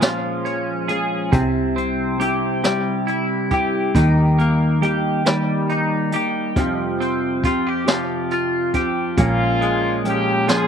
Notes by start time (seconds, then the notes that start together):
Already playing: A#2 G#3 F4 G#4
0.01 A#2 F3 G#3 C#4 F4, snare, closed hi-hat
0.45 C#4, closed hi-hat
0.88 G#3 C#4 F4 G#4, closed hi-hat
1.32 C2 C3 G3 C4 E4 G4, kick, closed hi-hat
1.76 C4, closed hi-hat
2.19 G3 C4 E4 G4, closed hi-hat
2.63 C3 G3 C4 E4 G4, snare, closed hi-hat
3.07 E4, closed hi-hat
3.51 C4 E4 G4, kick, closed hi-hat
3.94 D#2 D#3 G3 A#3 D#4 G4, kick, closed hi-hat
4.38 A#3, closed hi-hat
4.81 G3 A#3 D#4 G4, closed hi-hat
5.25 D#3 G3 A#3 D#4 G4, snare, closed hi-hat
5.69 D#4, closed hi-hat
6.12 A#3 D#4 G4, closed hi-hat
6.56 F2 C3 F3 C4 F4 G4, kick, closed hi-hat
7.00 C4, closed hi-hat
7.43 F3 C4 F4 G4, kick, closed hi-hat
7.67 G4
7.87 F2 C3 F3 C4 F4 G4, snare, closed hi-hat
8.31 F4, closed hi-hat
8.73 F3 C4 F4 G4, kick, closed hi-hat
9.17 A#1 A#2 F3 G#3 C#4 F4 G#4, kick, closed hi-hat
9.61 G#3, closed hi-hat
10.05 F3 G#3 C#4 G4, closed hi-hat
10.48 A#2 F3 G#3 C#4 G#4, snare, closed hi-hat